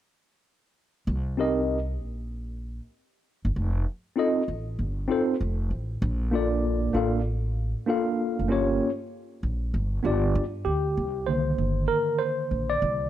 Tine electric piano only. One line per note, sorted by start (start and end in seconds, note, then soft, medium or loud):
1.37 1.77 C4 medium
1.37 1.77 D#4 medium
1.37 1.78 G4 medium
1.37 1.78 A#4 medium
1.37 1.79 D#5 medium
4.16 4.41 C4 medium
4.16 4.41 D#4 medium
4.16 4.42 F4 medium
4.16 4.42 A4 medium
4.16 4.42 D#5 medium
5.08 5.33 C4 medium
5.08 5.34 D#4 medium
5.08 5.34 F4 medium
5.08 5.35 A4 medium
5.08 5.35 C5 medium
6.31 6.92 A#3 medium
6.31 6.93 D4 medium
6.31 6.93 F4 medium
6.31 6.95 A4 medium
6.31 7.23 D5 medium
6.93 7.19 A#3 medium
6.93 7.19 D4 medium
6.93 7.19 F4 medium
6.93 7.20 A4 medium
6.93 7.20 F5 medium
7.87 8.47 A#3 medium
7.87 8.50 D4 medium
7.87 8.49 F4 medium
7.87 8.51 A4 medium
7.87 8.51 F5 medium
8.48 8.88 A#3 medium
8.48 8.88 C#4 medium
8.48 8.89 F4 medium
8.48 8.89 G4 medium
8.48 8.90 C#5 medium
10.03 10.43 B3 medium
10.03 10.43 D4 medium
10.03 10.44 F4 medium
10.03 10.44 G4 medium
10.03 10.45 D5 medium
10.65 11.29 G4 medium
11.27 13.10 D3 soft
11.27 13.10 D#3 soft
11.27 13.10 A#3 soft
11.27 11.85 C5 medium
11.88 12.21 A#4 medium
12.19 12.72 C5 medium
12.70 13.10 D5 medium